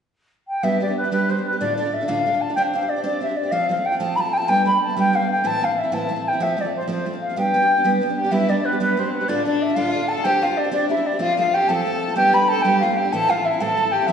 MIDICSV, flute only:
0, 0, Header, 1, 2, 480
1, 0, Start_track
1, 0, Tempo, 320171
1, 962, Time_signature, 6, 3, 24, 8
1, 21176, End_track
2, 0, Start_track
2, 0, Title_t, "Flute"
2, 0, Program_c, 0, 73
2, 718, Note_on_c, 0, 79, 72
2, 950, Note_on_c, 0, 76, 99
2, 973, Note_off_c, 0, 79, 0
2, 1213, Note_off_c, 0, 76, 0
2, 1226, Note_on_c, 0, 74, 69
2, 1439, Note_off_c, 0, 74, 0
2, 1451, Note_on_c, 0, 71, 60
2, 1667, Note_off_c, 0, 71, 0
2, 1677, Note_on_c, 0, 71, 81
2, 1946, Note_on_c, 0, 72, 64
2, 1969, Note_off_c, 0, 71, 0
2, 2176, Note_off_c, 0, 72, 0
2, 2182, Note_on_c, 0, 71, 67
2, 2385, Note_off_c, 0, 71, 0
2, 2394, Note_on_c, 0, 74, 94
2, 2638, Note_off_c, 0, 74, 0
2, 2664, Note_on_c, 0, 74, 64
2, 2903, Note_on_c, 0, 76, 73
2, 2925, Note_off_c, 0, 74, 0
2, 3115, Note_on_c, 0, 77, 85
2, 3138, Note_off_c, 0, 76, 0
2, 3613, Note_on_c, 0, 81, 72
2, 3635, Note_off_c, 0, 77, 0
2, 3821, Note_off_c, 0, 81, 0
2, 3830, Note_on_c, 0, 79, 110
2, 3920, Note_off_c, 0, 79, 0
2, 4113, Note_on_c, 0, 77, 73
2, 4331, Note_on_c, 0, 74, 71
2, 4353, Note_off_c, 0, 77, 0
2, 4561, Note_off_c, 0, 74, 0
2, 4570, Note_on_c, 0, 74, 80
2, 4808, Note_off_c, 0, 74, 0
2, 4835, Note_on_c, 0, 76, 69
2, 5043, Note_on_c, 0, 74, 82
2, 5066, Note_off_c, 0, 76, 0
2, 5267, Note_on_c, 0, 77, 110
2, 5290, Note_off_c, 0, 74, 0
2, 5535, Note_off_c, 0, 77, 0
2, 5542, Note_on_c, 0, 77, 78
2, 5776, Note_on_c, 0, 79, 82
2, 5799, Note_off_c, 0, 77, 0
2, 5971, Note_off_c, 0, 79, 0
2, 5980, Note_on_c, 0, 81, 97
2, 6234, Note_on_c, 0, 83, 89
2, 6249, Note_off_c, 0, 81, 0
2, 6301, Note_on_c, 0, 81, 97
2, 6316, Note_off_c, 0, 83, 0
2, 6489, Note_on_c, 0, 79, 89
2, 6504, Note_off_c, 0, 81, 0
2, 6556, Note_on_c, 0, 81, 97
2, 6571, Note_off_c, 0, 79, 0
2, 6726, Note_on_c, 0, 79, 107
2, 6748, Note_off_c, 0, 81, 0
2, 6981, Note_off_c, 0, 79, 0
2, 6990, Note_on_c, 0, 83, 81
2, 7204, Note_off_c, 0, 83, 0
2, 7243, Note_on_c, 0, 81, 76
2, 7448, Note_off_c, 0, 81, 0
2, 7474, Note_on_c, 0, 79, 92
2, 7724, Note_on_c, 0, 77, 83
2, 7746, Note_off_c, 0, 79, 0
2, 7948, Note_off_c, 0, 77, 0
2, 7955, Note_on_c, 0, 79, 86
2, 8194, Note_on_c, 0, 81, 119
2, 8216, Note_off_c, 0, 79, 0
2, 8456, Note_on_c, 0, 77, 83
2, 8478, Note_off_c, 0, 81, 0
2, 8672, Note_on_c, 0, 76, 77
2, 8695, Note_off_c, 0, 77, 0
2, 8899, Note_on_c, 0, 81, 90
2, 8922, Note_off_c, 0, 76, 0
2, 9412, Note_on_c, 0, 79, 75
2, 9434, Note_off_c, 0, 81, 0
2, 9633, Note_on_c, 0, 76, 89
2, 9655, Note_off_c, 0, 79, 0
2, 9906, Note_on_c, 0, 74, 75
2, 9928, Note_off_c, 0, 76, 0
2, 10119, Note_off_c, 0, 74, 0
2, 10135, Note_on_c, 0, 72, 66
2, 10335, Note_off_c, 0, 72, 0
2, 10349, Note_on_c, 0, 72, 81
2, 10580, Note_off_c, 0, 72, 0
2, 10812, Note_on_c, 0, 77, 70
2, 11031, Note_off_c, 0, 77, 0
2, 11070, Note_on_c, 0, 79, 104
2, 11844, Note_off_c, 0, 79, 0
2, 12235, Note_on_c, 0, 79, 72
2, 12465, Note_on_c, 0, 76, 96
2, 12487, Note_off_c, 0, 79, 0
2, 12731, Note_on_c, 0, 74, 79
2, 12754, Note_off_c, 0, 76, 0
2, 12966, Note_on_c, 0, 71, 76
2, 12989, Note_off_c, 0, 74, 0
2, 13200, Note_off_c, 0, 71, 0
2, 13209, Note_on_c, 0, 71, 81
2, 13474, Note_on_c, 0, 72, 72
2, 13497, Note_off_c, 0, 71, 0
2, 13694, Note_off_c, 0, 72, 0
2, 13703, Note_on_c, 0, 71, 70
2, 13916, Note_on_c, 0, 74, 96
2, 13939, Note_off_c, 0, 71, 0
2, 14172, Note_off_c, 0, 74, 0
2, 14181, Note_on_c, 0, 74, 71
2, 14422, Note_on_c, 0, 76, 85
2, 14445, Note_off_c, 0, 74, 0
2, 14615, Note_on_c, 0, 77, 100
2, 14637, Note_off_c, 0, 76, 0
2, 15116, Note_on_c, 0, 81, 84
2, 15139, Note_off_c, 0, 77, 0
2, 15350, Note_on_c, 0, 79, 109
2, 15372, Note_off_c, 0, 81, 0
2, 15616, Note_off_c, 0, 79, 0
2, 15626, Note_on_c, 0, 77, 77
2, 15849, Note_on_c, 0, 74, 78
2, 15871, Note_off_c, 0, 77, 0
2, 16068, Note_off_c, 0, 74, 0
2, 16077, Note_on_c, 0, 74, 96
2, 16321, Note_off_c, 0, 74, 0
2, 16328, Note_on_c, 0, 76, 81
2, 16580, Note_on_c, 0, 74, 72
2, 16602, Note_off_c, 0, 76, 0
2, 16790, Note_off_c, 0, 74, 0
2, 16799, Note_on_c, 0, 77, 105
2, 17041, Note_off_c, 0, 77, 0
2, 17064, Note_on_c, 0, 77, 87
2, 17296, Note_on_c, 0, 79, 85
2, 17319, Note_off_c, 0, 77, 0
2, 17511, Note_on_c, 0, 81, 92
2, 17534, Note_off_c, 0, 79, 0
2, 18219, Note_off_c, 0, 81, 0
2, 18228, Note_on_c, 0, 79, 111
2, 18496, Note_on_c, 0, 83, 94
2, 18518, Note_off_c, 0, 79, 0
2, 18717, Note_on_c, 0, 81, 92
2, 18739, Note_off_c, 0, 83, 0
2, 18919, Note_on_c, 0, 79, 89
2, 18941, Note_off_c, 0, 81, 0
2, 19176, Note_off_c, 0, 79, 0
2, 19184, Note_on_c, 0, 77, 86
2, 19439, Note_on_c, 0, 79, 90
2, 19461, Note_off_c, 0, 77, 0
2, 19673, Note_on_c, 0, 81, 120
2, 19695, Note_off_c, 0, 79, 0
2, 19934, Note_on_c, 0, 77, 95
2, 19957, Note_off_c, 0, 81, 0
2, 20165, Note_on_c, 0, 76, 81
2, 20187, Note_off_c, 0, 77, 0
2, 20405, Note_on_c, 0, 81, 93
2, 20428, Note_off_c, 0, 76, 0
2, 20860, Note_on_c, 0, 79, 81
2, 20882, Note_off_c, 0, 81, 0
2, 21092, Note_on_c, 0, 76, 118
2, 21114, Note_off_c, 0, 79, 0
2, 21176, Note_off_c, 0, 76, 0
2, 21176, End_track
0, 0, End_of_file